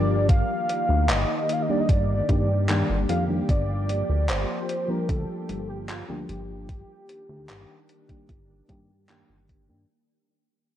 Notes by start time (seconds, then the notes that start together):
Already playing: G1 F3 G3 A#3 D4 G4 D5
0.29 D#3 G4 F5, kick, closed hi-hat
0.69 closed hi-hat
0.89 D2
1.09 G1 D#5, clap, closed hi-hat
1.49 F5, closed hi-hat
1.62 D#5
1.68 D#3 G3 A#3 D4 G4 D5
1.80 D#5
1.89 G1 D5, kick, closed hi-hat
2.28 G2 D#3 G3 A#3 D4 G4, kick, closed hi-hat
2.68 D#3 G3 A#3 D4 G4, clap, closed hi-hat
2.89 G1
3.09 F2 F5, closed hi-hat
3.28 D#3 G3 A#3 D4 G4
3.49 G1 F3 D5, kick, closed hi-hat
3.89 closed hi-hat
4.09 D2
4.29 G1 C5, clap, closed hi-hat
4.69 closed hi-hat
4.88 F3 G3 A#3 D4 G4 A#4
5.09 D2 A4, kick, closed hi-hat
5.49 G1, closed hi-hat
5.69 G4
5.89 F4, clap, closed hi-hat
6.08 D2 F3 G3 A#3 D4 G4
6.29 G1 G4, closed hi-hat
6.69 D#3 D4, kick, closed hi-hat
7.09 closed hi-hat
7.29 D2
7.49 G1, clap, closed hi-hat
7.89 closed hi-hat
8.09 D#3 G3 A#3 D4 G4, kick, closed hi-hat
8.29 G1, kick, closed hi-hat
8.68 G2 D#3 G3 A#3 D4 G4, kick, closed hi-hat
9.09 D#3 G3 A#3 D4 G4, clap, closed hi-hat
9.29 G1
9.49 kick, closed hi-hat
9.68 G2 D#3 G3 A#3 D4 G4